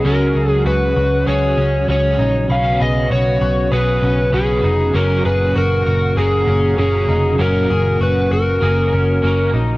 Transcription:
0.00 1.26 C#3 medium
0.00 4.90 C#3 medium
0.00 4.90 F#3 medium
0.00 4.91 F#4 loud
0.04 0.31 C#2 loud
0.04 1.25 F#3 medium
0.04 2.47 G#3 medium
0.04 0.35 C#4 loud
0.04 1.26 C#4 medium
0.04 1.28 F#4 medium
0.04 0.49 A#4 medium
0.09 1.28 G#4 medium
0.35 0.62 C#2 medium
0.35 0.65 G#4 medium
0.49 0.63 G#4 medium
0.65 0.92 C#2 medium
0.65 0.95 F#4 medium
0.65 1.28 B4 medium
0.96 1.23 C#2 loud
0.96 1.27 F#4 medium
1.26 1.54 C#2 loud
1.26 1.87 F#3 medium
1.26 1.88 C#4 medium
1.26 1.90 F#4 medium
1.26 1.58 G#4 loud
1.26 1.89 G#4 medium
1.26 1.89 C#5 loud
1.58 1.85 C#2 loud
1.58 1.87 C#4 medium
1.87 2.15 C#2 loud
1.87 2.47 F#3 medium
1.87 2.19 C#4 medium
1.87 2.50 C#4 medium
1.87 2.51 F#4 medium
1.87 2.51 G#4 medium
1.87 2.47 C#5 loud
2.19 2.46 A#1 medium
2.19 2.50 D#4 medium
2.48 2.76 B1 loud
2.48 3.70 B3 medium
2.48 4.92 B3 medium
2.48 2.80 C#4 medium
2.48 3.72 C#4 medium
2.48 2.82 F5 medium
2.48 4.47 B5 medium
2.52 3.73 F#4 medium
2.52 3.74 B4 medium
2.80 3.07 B1 medium
2.80 3.11 G#4 medium
2.80 3.12 D#5 medium
3.11 3.38 B1 medium
3.11 3.40 F#4 medium
3.11 3.73 C#5 loud
3.41 3.68 B1 loud
3.41 3.71 F#4 medium
3.71 3.99 B1 loud
3.71 4.31 B3 medium
3.71 4.33 C#4 medium
3.71 4.34 F#4 medium
3.71 4.02 G#4 medium
3.71 4.30 B4 loud
3.71 4.34 B4 medium
4.03 4.29 B1 loud
4.03 4.32 C#4 medium
4.32 4.60 B1 loud
4.32 4.94 B3 medium
4.32 4.64 C#4 medium
4.32 4.95 C#4 medium
4.32 4.95 F#4 medium
4.32 4.97 G#4 medium
4.32 4.95 B4 medium
4.63 4.90 F1 medium
4.63 4.94 D#4 medium
4.94 5.21 F#1 loud
4.94 9.78 A#2 medium
4.94 9.78 C#3 medium
4.94 5.25 F#3 medium
4.94 9.78 F#3 medium
4.94 5.25 A#3 medium
4.94 5.25 C#4 loud
4.94 5.25 C#4 medium
4.94 9.78 F#4 medium
4.94 5.25 F#4 loud
4.94 5.26 A#4 loud
5.25 5.52 F#1 medium
5.25 6.16 C#4 soft
5.25 6.18 F#4 soft
5.25 5.55 G#4 medium
5.25 5.57 B4 medium
5.56 5.83 F#1 loud
5.56 5.85 F#4 medium
5.56 6.19 A#4 medium
5.86 6.13 F#1 loud
5.86 6.17 F#4 medium
6.16 6.44 F#1 loud
6.16 6.76 A#3 medium
6.16 6.77 C#4 medium
6.16 6.79 F#4 medium
6.16 6.48 G#4 medium
6.16 6.78 G#4 loud
6.16 6.80 A#4 medium
6.48 6.74 F#1 loud
6.48 6.77 C#4 medium
6.77 7.05 F#1 loud
6.77 7.38 A#3 medium
6.77 7.08 C#4 medium
6.77 7.38 C#4 medium
6.77 7.39 F#4 medium
6.77 7.42 G#4 medium
6.77 7.40 A#4 medium
7.09 7.36 F1 medium
7.09 7.39 D#4 medium
7.38 7.66 F#1 loud
7.38 7.69 F#3 medium
7.38 7.70 A#3 medium
7.38 7.70 C#4 loud
7.38 7.70 C#4 medium
7.38 7.70 F#4 medium
7.38 7.70 A#4 medium
7.38 8.03 A#4 loud
7.70 7.97 F#1 medium
7.70 8.60 C#4 soft
7.70 8.63 F#4 soft
7.70 8.01 G#4 medium
8.01 8.27 F#1 medium
8.01 8.30 F#4 medium
8.01 8.33 B4 medium
8.31 8.58 F#1 medium
8.31 8.62 F#4 medium
8.31 9.51 A#4 medium
8.60 8.89 F#1 loud
8.60 9.22 A#3 medium
8.60 9.22 C#4 medium
8.60 9.24 F#4 medium
8.60 8.93 G#4 medium
8.60 9.25 A#4 medium
8.60 9.78 F6 soft
8.93 9.19 F#1 loud
8.93 9.22 C#4 medium
9.22 9.50 F#1 loud
9.22 9.78 A#3 medium
9.22 9.54 C#4 medium
9.22 9.78 C#4 medium
9.22 9.78 F#4 medium
9.22 9.78 A#4 medium
9.54 9.78 A#1 medium
9.54 9.78 D#4 medium

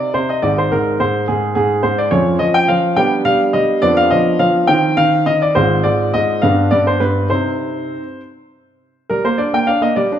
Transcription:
0.00 0.13 C3 soft
0.00 0.39 C4 soft
0.00 0.39 D#4 soft
0.00 0.14 D5 medium
0.14 0.42 C3 soft
0.14 0.28 C5 medium
0.29 0.43 D#5 medium
0.42 0.71 G#1 soft
0.42 0.71 G#2 soft
0.42 2.09 D#4 soft
0.42 0.57 D5 medium
0.58 0.72 C5 medium
0.72 0.99 G#2 soft
0.72 0.97 A#4 medium
1.00 1.27 G#2 soft
1.00 1.25 C5 medium
1.28 1.55 G#2 soft
1.28 1.53 G#4 medium
1.55 1.82 G#2 soft
1.55 1.81 G#4 medium
1.83 2.11 G#2 soft
1.83 1.98 C5 medium
1.98 2.13 D5 medium
2.11 2.40 F2 soft
2.11 2.38 F3 soft
2.11 2.93 C#4 soft
2.11 2.93 F4 soft
2.11 2.40 C#5 medium
2.39 2.68 F3 soft
2.39 2.54 D#5 medium
2.54 2.69 G5 medium
2.68 2.97 F3 soft
2.68 2.97 F5 medium
2.96 3.24 G3 soft
2.96 3.79 B3 soft
2.96 3.79 D4 soft
2.96 3.14 G5 medium
3.25 3.53 G3 soft
3.25 3.43 F5 medium
3.53 3.82 G3 soft
3.53 3.80 D#5 medium
3.82 4.11 F2 soft
3.82 4.10 F3 soft
3.82 4.65 B3 soft
3.82 4.65 D4 soft
3.82 3.97 D5 medium
3.97 4.12 F5 medium
4.10 4.38 F3 soft
4.10 4.40 D#5 medium
4.39 4.68 F3 soft
4.39 4.69 F5 medium
4.67 4.96 D#3 soft
4.67 5.51 C4 soft
4.67 5.51 D#4 soft
4.67 4.97 G5 medium
4.97 5.25 D#3 soft
4.97 5.26 F5 medium
5.26 5.55 D#3 soft
5.26 5.41 D#5 medium
5.42 5.56 D5 medium
5.55 5.84 G#1 soft
5.55 5.83 G#2 soft
5.55 6.39 C4 soft
5.55 6.39 F4 soft
5.55 5.84 C5 medium
5.83 6.13 G#2 soft
5.83 6.10 D5 medium
6.14 6.42 G#2 soft
6.14 6.43 D#5 medium
6.42 6.71 G2 soft
6.42 7.28 B3 soft
6.42 7.28 D4 soft
6.42 6.69 F5 medium
6.71 7.00 G2 soft
6.71 6.86 D5 medium
6.87 7.02 C5 medium
7.00 7.30 G2 soft
7.00 7.28 B4 medium
7.30 7.94 C3 soft
7.30 8.03 C4 soft
7.30 8.03 D#4 soft
7.30 8.20 C5 medium
9.10 9.24 G3 soft
9.10 9.24 A#4 medium
9.25 9.40 A#3 soft
9.25 9.39 C5 medium
9.38 9.54 D4 soft
9.38 9.53 D5 medium
9.53 9.69 A#3 soft
9.53 9.68 G5 medium
9.67 9.83 D4 soft
9.67 9.82 F5 medium
9.81 9.97 A#3 soft
9.81 9.97 D#5 medium
9.96 10.11 G3 soft
9.96 10.14 D5 medium
10.12 10.19 D4 soft

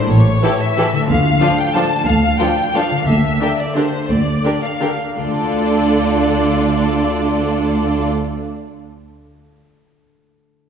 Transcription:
0.00 1.02 A2 soft
0.00 0.95 A3 soft
0.00 1.07 E4 soft
0.06 0.35 A1 medium
0.06 1.09 G4 soft
0.10 0.36 A2 medium
0.10 0.60 C#5 medium
0.43 0.51 E3 soft
0.43 0.51 E4 soft
0.43 0.52 G4 soft
0.43 0.52 A4 soft
0.60 0.94 E5 medium
0.77 0.85 E3 soft
0.77 0.85 E4 soft
0.77 0.86 G4 soft
0.77 0.86 A4 soft
0.92 2.90 D3 soft
0.92 1.01 E5 medium
0.97 3.03 A3 soft
1.01 2.99 D4 soft
1.06 1.35 D2 medium
1.06 3.07 F4 soft
1.06 1.58 F5 medium
1.10 1.35 D2 medium
1.41 1.49 F3 soft
1.41 1.50 D4 soft
1.41 1.49 F4 soft
1.41 1.50 A4 soft
1.58 1.75 G5 medium
1.75 1.83 F3 soft
1.75 1.83 D4 soft
1.75 1.83 F4 soft
1.75 1.84 A4 soft
1.75 2.07 A5 medium
2.07 2.33 D2 medium
2.07 2.40 F5 medium
2.40 2.49 F3 soft
2.40 2.49 D4 soft
2.40 2.48 F4 soft
2.40 2.48 A4 soft
2.40 2.75 G5 medium
2.74 2.83 F3 soft
2.74 2.84 D4 soft
2.74 2.82 F4 soft
2.74 2.82 A4 soft
2.74 3.08 F5 medium
2.91 5.10 D3 soft
2.95 5.13 A#3 soft
3.00 5.30 D4 soft
3.04 5.17 G4 soft
3.08 3.34 D2 soft
3.08 3.35 D2 soft
3.08 3.58 E5 soft
3.41 3.49 D3 soft
3.41 3.49 D4 soft
3.41 3.50 G4 soft
3.41 3.50 A#4 soft
3.59 3.76 D5 soft
3.76 3.84 D3 soft
3.76 3.84 D4 soft
3.76 3.84 G4 soft
3.76 3.84 A#4 soft
3.76 4.10 C5 soft
4.10 4.37 D2 soft
4.10 4.62 D5 medium
4.45 4.53 D3 soft
4.45 4.53 D4 soft
4.45 4.53 G4 soft
4.45 4.53 A#4 soft
4.63 5.00 F5 soft
4.80 4.88 D3 soft
4.80 4.89 D4 soft
4.80 4.89 G4 soft
4.80 4.90 A#4 soft
5.17 8.08 D2 soft
5.17 8.09 D2 soft
5.17 9.07 D3 soft
5.17 8.08 D3 soft
5.17 8.08 D4 soft
5.17 8.08 F4 soft
5.17 8.08 A4 soft
5.17 8.08 D5 soft
5.24 8.57 A3 soft
5.31 8.53 D4 soft
5.38 8.60 F4 soft
5.45 8.67 D5 soft

